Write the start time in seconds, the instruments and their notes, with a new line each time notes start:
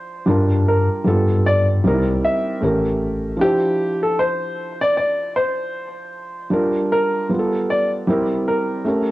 Already playing: felt piano F3 D4 E4 C5, upright piano C5
0.26 tine electric piano G2, felt piano G3 D4 F4 A#4
0.68 upright piano A#4
1.04 tine electric piano G2, felt piano G3 B3 F4 A4
1.46 upright piano D5
1.84 tine electric piano C2, felt piano G3 C4 D#4 A#4
1.93 felt piano E4
2.25 upright piano E5
2.61 tine electric piano A1, felt piano A3 C#4 G4 A#4
3.37 felt piano F3 D4
3.41 felt piano E4 C5, upright piano G4
4.03 upright piano A4
4.19 upright piano C5
4.81 upright piano D5
4.97 upright piano D5
5.36 upright piano C5
6.50 felt piano G3 D4 F4 A#4
6.92 upright piano A#4
7.29 felt piano G3 B3 F4 G4
7.39 felt piano A4
7.70 upright piano D5
8.07 felt piano G3 C4 E4 A#4
8.48 upright piano A#4
8.85 felt piano A3 C#4 G4 A#4